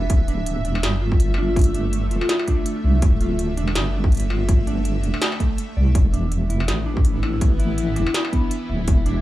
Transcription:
0.00 5.91 E5 medium
0.10 0.66 D1 loud
0.10 5.91 D3 medium
0.10 5.91 A3 medium
0.10 kick loud
0.10 closed hi-hat medium
0.28 0.63 D4 loud
0.28 closed hi-hat soft
0.46 closed hi-hat medium
0.65 0.84 E1 loud
0.65 0.82 D4 medium
0.65 closed hi-hat soft
0.75 struck metal medium
0.83 2.13 G1 medium
0.83 snare loud
0.83 closed hi-hat medium
1.02 1.36 F4 medium
1.12 kick loud
1.20 closed hi-hat medium
1.34 1.73 D4 loud
1.34 1.44 F4 medium
1.34 struck metal medium
1.48 1.53 F4 medium
1.56 kick loud
1.56 closed hi-hat soft
1.59 closed hi-hat soft
1.61 closed hi-hat medium
1.64 closed hi-hat medium
1.74 1.92 D4 medium
1.74 closed hi-hat soft
1.93 closed hi-hat medium
2.11 2.21 E1 loud
2.11 2.46 F4 medium
2.11 closed hi-hat soft
2.21 2.58 F4 loud
2.21 struck metal medium
2.29 snare loud
2.29 closed hi-hat medium
2.39 struck metal medium
2.47 2.82 D4 loud
2.47 kick medium
2.47 closed hi-hat soft
2.66 closed hi-hat medium
2.84 3.01 C2 medium
2.84 3.02 D4 medium
3.02 3.59 D1 loud
3.02 kick loud
3.02 closed hi-hat medium
3.21 3.56 F4 medium
3.21 closed hi-hat soft
3.39 closed hi-hat medium
3.57 3.77 E1 loud
3.57 3.92 D4 medium
3.57 closed hi-hat soft
3.68 struck metal medium
3.75 5.05 G1 medium
3.75 snare loud
3.75 closed hi-hat medium
3.94 4.11 D4 medium
4.04 kick loud
4.12 closed hi-hat soft
4.15 closed hi-hat soft
4.17 closed hi-hat soft
4.20 closed hi-hat medium
4.30 4.65 F4 medium
4.30 struck metal soft
4.49 kick loud
4.49 closed hi-hat medium
4.67 5.02 D4 loud
4.67 closed hi-hat soft
4.85 closed hi-hat medium
5.03 5.13 E1 medium
5.03 5.21 D4 medium
5.03 closed hi-hat soft
5.14 struck metal medium
5.22 snare loud
5.22 closed hi-hat medium
5.32 struck metal medium
5.40 5.57 A3 medium
5.40 kick medium
5.40 closed hi-hat soft
5.58 closed hi-hat medium
5.77 5.94 C2 medium
5.77 5.93 D5 medium
5.95 6.51 E1 loud
5.95 9.21 E3 medium
5.95 8.85 B3 medium
5.95 9.21 E4 medium
5.95 kick loud
5.95 closed hi-hat medium
6.13 6.31 D4 medium
6.13 closed hi-hat soft
6.32 closed hi-hat medium
6.50 6.70 F1 medium
6.50 6.85 E4 medium
6.50 closed hi-hat soft
6.60 struck metal medium
6.68 7.98 A1 medium
6.68 snare loud
6.68 closed hi-hat medium
6.86 7.21 D4 loud
6.97 kick loud
7.05 closed hi-hat medium
7.23 7.40 D4 medium
7.23 7.30 E4 medium
7.23 struck metal soft
7.33 7.38 E4 medium
7.41 kick loud
7.41 closed hi-hat medium
7.59 7.94 E4 medium
7.59 closed hi-hat soft
7.78 closed hi-hat medium
7.96 8.06 F1 loud
7.96 8.31 D4 medium
7.96 8.03 D4 medium
7.96 closed hi-hat soft
8.06 8.12 D4 medium
8.06 struck metal medium
8.14 snare loud
8.14 closed hi-hat medium
8.25 struck metal medium
8.32 8.84 B3 medium
8.32 8.50 D4 medium
8.32 kick medium
8.32 closed hi-hat soft
8.51 closed hi-hat medium
8.69 8.86 D1 medium
8.69 9.04 E4 medium
8.88 9.21 E1 loud
8.88 9.21 A3 medium
8.88 kick loud
8.88 closed hi-hat medium
9.06 9.21 D4 loud
9.06 closed hi-hat soft

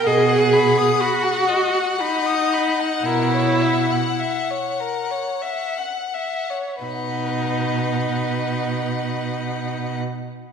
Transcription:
0.04 0.84 B2 soft
0.04 1.02 G#4 medium
0.04 0.30 D#5 soft
0.04 6.53 F#5 soft
0.29 0.55 F#5 soft
0.53 0.79 B5 soft
0.78 1.02 D#6 soft
1.01 2.02 F#4 medium
1.01 1.25 B5 soft
1.23 1.50 F#5 soft
1.49 1.75 D#5 soft
1.73 2.02 F#5 soft
2.00 3.07 D#4 medium
2.00 2.28 B5 soft
2.26 2.55 D#6 soft
2.54 2.82 B5 soft
2.80 3.05 F#5 soft
3.04 3.97 B2 soft
3.04 4.17 E4 medium
3.04 3.35 A#4 soft
3.34 3.63 C#5 soft
3.62 3.92 E5 soft
3.91 4.21 F#5 soft
4.19 4.52 E5 soft
4.50 4.82 C#5 soft
4.80 5.13 A#4 soft
5.11 5.43 C#5 soft
5.42 5.79 E5 soft
5.78 6.15 F#5 soft
6.14 6.51 E5 soft
6.50 6.82 C#5 soft
6.83 9.97 B2 soft
6.83 9.96 D#4 soft
6.83 9.97 B4 soft
6.83 9.97 F#5 soft

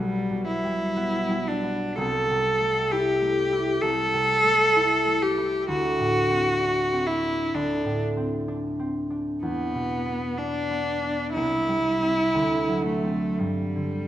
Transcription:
0.00 2.02 B1 soft
0.00 0.30 B2 soft
0.00 0.47 G3 medium
0.00 0.63 G3 soft
0.00 0.95 B3 soft
0.31 2.02 B2 soft
0.48 1.49 E4 medium
0.64 1.27 G3 soft
0.96 1.62 B3 soft
1.28 2.01 G3 soft
1.48 1.98 D4 medium
1.63 2.01 B3 soft
1.97 3.82 C2 soft
1.97 2.93 A4 medium
2.30 4.12 C3 soft
2.61 3.20 A3 soft
2.91 3.51 E4 soft
2.91 3.83 G4 medium
3.22 4.43 A3 soft
3.53 4.75 E4 soft
3.82 5.74 C2 soft
3.82 5.24 A4 medium
4.13 5.73 C3 soft
4.44 5.06 A3 soft
4.76 5.36 E4 soft
5.07 8.97 A3 soft
5.23 5.69 G4 medium
5.38 5.73 E4 soft
5.68 7.53 D2 soft
5.68 7.09 F#4 medium
5.99 7.83 A2 soft
6.30 6.91 C4 soft
6.60 7.22 D4 soft
6.92 8.16 C4 soft
7.07 7.56 E4 medium
7.23 8.47 D4 soft
7.54 9.48 D2 soft
7.54 8.02 D4 medium
7.85 9.47 A2 soft
8.17 8.78 C4 soft
8.48 9.09 D4 soft
8.79 9.48 C4 soft
9.10 10.36 D4 soft
9.43 11.38 E2 soft
9.43 10.40 B3 medium
9.75 11.38 B2 soft
10.06 10.69 B3 soft
10.38 11.01 D4 soft
10.38 11.33 D4 medium
10.71 11.39 B3 soft
11.03 11.39 D4 soft
11.33 12.39 C2 soft
11.33 12.82 E4 medium
11.68 12.39 G3 soft
12.02 13.03 C4 soft
12.34 13.44 D2 soft
12.69 13.44 F#3 soft
12.86 13.40 A3 medium
13.04 13.44 A3 soft
13.04 13.44 C4 soft
13.39 14.08 G2 soft
13.39 14.08 G3 medium
13.76 14.08 D3 soft

